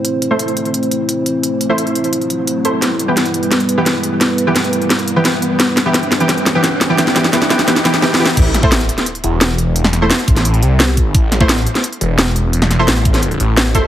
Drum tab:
CC |------------------------------------------------|------------------------------------------------|------------------------------------------------|------------------------------------------------|
HH |x-----x-----x--x--x--x--x--x--x-----x-----x-----|x-----x-----x--x--x--x--x--x--x-----x-----x-----|x-----x-----x--x--x--x--x--x--x-----x-----x-----|x-----x-----x--x--x--x--x--x--x-----x-----x-----|
SD |------------------------------------------------|------------------------------------------------|o-----------o-----------o-----------o-----------|o-----------o-----------o-----------o-----------|
BD |------------------------------------------------|------------------------------------------------|------------------------------------------------|------------------------------------------------|

CC |------------------------------------------------|------------------------------------------------|x-----------------------------------------------|------------------------------------------------|
HH |x-----x-----x--x--x--x--x--x--x-----x-----x-----|x-----x-----x--x--x--x--x--x--x-----------------|x-----x-----x--x--x--x--x--x--x-----x-----x-----|x-----x-----x--x--x--x--x--x--x-----x-----x-----|
SD |o-----o-----o-----o-----o-----o-----o-----o-----|o--o--o--o--o--o--o--o--o--o--o--o--o---o---o---|------o-----o--------o--------------o-----------|---o--o-----o--------o--------------o-----------|
BD |------------------------------------------------|------------------------------------------------|o--------o--------------------------------------|------------------o-----------------------o-----|

CC |------------------------------------------------|------------------------------------------------|
HH |x-----x-----x--x--x--x--x--x--x-----x-----x-----|x-----x-----x--x--x--x--x--x--x-----x-----x-----|
SD |------o-----o--------o--------------o-----------|---o--o-----o--------o--------------o-----------|
BD |o--------o--------------------------------------|------------------o-----------------------o-----|